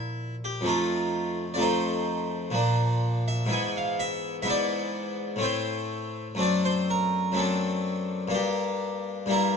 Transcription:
Already playing: A#2 F3 A#3 E4
0.44 G4
0.61 F2 F3 A3
0.66 D#4 F4
1.54 F2 F3 D5
1.59 A3 D#4 C5
2.51 A#2 F3 A#3
2.55 D4
3.28 E5
3.46 G#2 E3 B3
3.51 E4 G#5
3.77 F5
3.99 E5
4.42 G#2 E3 B3 E5
4.48 E4 D5
5.36 A2 A3 C4
5.42 E4 C5
6.35 F#2 A3 C4
6.39 D4 D5
6.65 C5
6.90 A#4
7.32 F#2 A3 C4
7.36 D4 A4
8.28 G2 A#3 D4
8.34 G4
9.26 G2 G3 A#3
9.30 E4 A#4

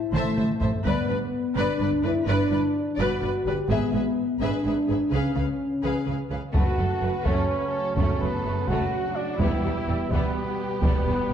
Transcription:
Already playing: E4
0.12 A1 A2 A3 C5 E5 A5, taiko mid
0.36 A1 A2 C5 E5 A5, taiko mid
0.61 A1 A2 C5 E5 A5, taiko low
0.84 G1 G2 B3 B4 D5, taiko
1.07 G1 G2 B4 D5
1.54 G1 G2 D4 B4 D5
1.80 G1 G2 B4 D5
1.92 taiko
2.03 G1 G2 E4 B4 D5
2.26 G1 G2 D4 B4 D5
2.50 G1 G2 B4 D5
2.98 G1 G2 F#4 B4 D5
3.22 G1 G2 B4 D5
3.46 G1 G2 G4 B4 D5
3.69 G#1 G#2 B3 G#4 B4 E5, taiko
3.93 G#1 G#2 G#4 B4 E5
4.40 G#1 G#2 D4 G#4 B4 E5
4.64 G#1 G#2 G#4 B4 E5
4.88 G#1 G#2 G#4 B4 E5
5.12 C#2 C#3 C#4 G#4 B4 F5
5.35 C#2 C#3 G#4 B4 F5
5.82 C#2 C#3 G#4 B4 F5
6.06 C#2 C#3 G#4 B4 F5
6.31 C#2 C#3 G#4 B4 F5
6.53 F#1 F#2 C#3 F#3 A3 F#4 B4 F#5, taiko
6.77 F#1 F#2 A3 A4
7.02 F#1 F#2 A3 B4
7.25 F#1 F#2 A3 C#4 A4 C#5, taiko
7.48 B4
7.72 A4
7.96 F#1 F#2 A3 C#4 A4 C#5, taiko
8.20 F#1 F#2 A3 B3 B4
8.45 F#1 F#2 A3
8.68 F#1 F#2 A3 F#4 F#5, taiko
9.14 D4 D5
9.38 E1 E2 B2 G3 B3 E4 G4 B4 E5, taiko
9.64 E1 E2 G3
9.88 E1 E2 G3
10.11 E1 E2 G3 B3 G4 B4, taiko
10.82 E1 E2 G3 B3 B4, taiko
11.06 E1 E2 G3
11.30 E1 E2

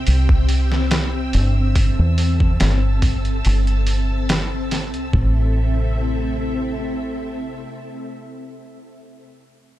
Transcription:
Already playing: C4 G5 E6
0.07 C2, open hi-hat
0.29 kick
0.49 open hi-hat
0.72 snare
0.91 snare, open hi-hat
1.33 G1, open hi-hat
1.75 A5, kick, open hi-hat
1.99 E2
2.18 open hi-hat
2.40 kick
2.60 G1, snare, open hi-hat
3.02 kick, open hi-hat
3.25 closed hi-hat
3.45 G1, open hi-hat
3.67 closed hi-hat
3.87 open hi-hat
4.29 snare, open hi-hat
4.71 snare, open hi-hat
4.94 C2, closed hi-hat
5.13 A1 C4 A4 E5, kick

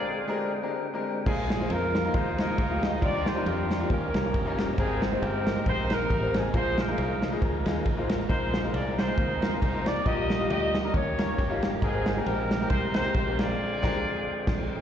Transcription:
Already playing: A#2 D3 G#3 C4 D4 F4 G4 G#4 A#4 D5 G5
0.28 G#3 C4 D4 G4 A#4
0.62 G#3 C4 D4 G4 A#4
0.94 G#3 C4 D4 G4 A#4
1.26 A#1 A#2 F3 G#3 A#3 D#4 F4 G#4 A#4, kick, crash
1.50 snare, ride bell
1.60 G#3 A#3 D#4 F4 C5
1.70 F2 D#4 F4 A#4, ride bell
1.95 snare, ride bell
2.04 G#3 A#3 D#4 F4 A#4
2.14 D#2 D#4 G#4 C5, kick, ride bell
2.38 G#3 A#3 D#4 F4 A#4 C5, snare, ride bell
2.58 D2, kick, ride bell
2.70 G#3 A#3 D#4 F4 G4
2.83 D#5, snare, ride bell
3.01 D#2 D#3 G3 D4 D#4 F4 G4 A#4 D5, kick, ride bell
3.26 C5, snare, ride bell
3.36 G3 D4 D#4 F4 A#4
3.46 F2 D4 G4 A#4, ride bell
3.71 snare, ride bell
3.80 G3 D4 D#4 F4 G4
3.90 D#2 D#3 A#3 C#4 G4 A#4, kick, ride bell
4.14 C2 G3 A#3 C#4 D#4 A#4, snare, ride bell
4.34 G1, kick, ride bell
4.46 G3 A#3 C#4 D#4 A#4
4.58 snare, ride bell
4.77 G#1 G#2 G#3 A#3 C4 D#4 G4 G#4 A#4, kick, ride bell
5.02 snare, ride bell
5.11 G#3 C4 D#4 G4 C5
5.22 G1 D#4 G4 A#4, ride bell
5.47 snare, ride bell
5.55 G#3 C4 D#4 G4 C5
5.66 A#1 D#4 G4 C5, kick, ride bell
5.90 G#3 C4 D#4 G4 A#4, snare, ride bell
6.10 A1, kick, ride bell
6.21 G#3 C4 D#4 G4 C5
6.34 G#4, snare, ride bell
6.53 A#1 A#2 F3 G#3 A#3 D#4 F4 G#4 A#4 C5, kick, ride bell
6.78 D#4 F4 A#4, snare, ride bell
6.87 G#3 A#3 D#4 F4 G#4
6.98 C2, ride bell
7.23 snare, ride bell
7.32 G#3 A#3 D#4 F4 G#4
7.42 D2, kick, ride bell
7.66 D#2 G#3 A#3 D#4 F4 G#4, snare, ride bell
7.86 A1, kick, ride bell
7.97 G#3 A#3 D#4 F4 C5
8.09 snare, ride bell
8.29 A#1 A#2 G#3 C4 D#4 F4 G#4 A#4 C5, kick, ride bell
8.54 snare, ride bell
8.63 G#3 C4 D#4 F4 A#4
8.73 C2 D5, ride bell
8.99 D#4 G#4 C5, snare, ride bell
9.07 G#3 C4 D#4 F4 A#4
9.18 D#2, kick, ride bell
9.41 G#3 C4 D#4 F4 A#4, snare, ride bell
9.61 C2 C5, kick, ride bell
9.73 G#3 C4 D#4 F4 A#4
9.86 D5, snare, ride bell
10.05 A#1 A#2 G3 A#3 D4 D#4 F4 G4 A#4 D#5, kick, ride bell
10.30 snare, ride bell
10.39 G3 D4 D#4 F4 G4
10.50 D2 G4 D#5, ride bell
10.75 snare, ride bell
10.83 G3 D4 D#4 F4 A#4
10.93 D#2 D#3 A#3 C#4 G4 A#4 C#5, kick, ride bell
11.17 G3 A#3 C#4 D#4 A#4, snare, ride bell
11.38 G1, kick, ride bell
11.49 G3 A#3 C#4 D#4 F4
11.63 snare, ride bell
11.81 G#1 G#2 G#3 C4 D#4 G4 G#4 A#4, kick, ride bell
12.06 snare, ride bell
12.17 G#3 C4 D#4 G4 A#4
12.26 A#1 D#4 G4 A#4, ride bell
12.51 snare, ride bell
12.60 G#3 C4 D#4 G4 A#4
12.70 C2 D#4 G4 C5, kick, ride bell
12.94 G#3 C4 D#4 G4 A#4 C5, snare, ride bell
13.14 A#1, kick, ride bell
13.26 G#3 C4 D#4 G4 A#4
13.38 F4 G#4 D5, snare, ride bell
13.58 D3 G#3 C4 G5
13.82 A#1 G#3 C4 D4 G4 A#4, kick, snare, crash
14.47 A#1, kick, snare, crash

